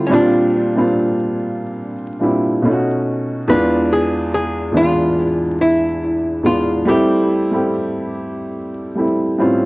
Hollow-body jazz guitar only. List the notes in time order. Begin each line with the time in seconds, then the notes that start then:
0.06 C#4
0.13 D4
3.50 B4
3.93 G#4
4.34 G#4
4.77 F4
5.61 E4
6.46 F4
6.89 G4